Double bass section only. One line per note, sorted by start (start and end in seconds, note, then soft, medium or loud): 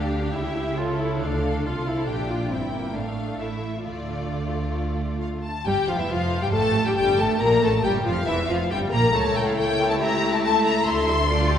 0.00 0.31 D2 medium
0.35 1.19 C#2 medium
1.21 1.64 D2 medium
1.65 2.07 C2 medium
2.08 2.51 A#1 medium
2.51 2.95 G1 medium
2.95 3.38 A1 soft
3.39 3.84 A1 soft
3.85 5.45 D2 soft
5.66 5.74 G1 medium
5.88 5.92 F1 medium
6.10 6.42 F1 medium
6.53 6.86 A1 medium
6.97 7.18 G1 medium
7.19 7.27 A1 medium
7.41 7.62 A#1 medium
7.62 7.84 A1 medium
7.84 7.92 G1 medium
8.06 8.27 F1 medium
8.28 8.49 E1 medium
8.49 8.70 F1 medium
8.71 8.79 G1 medium
8.93 9.14 A#1 medium
9.14 10.82 C#2 medium
10.87 11.59 D2 medium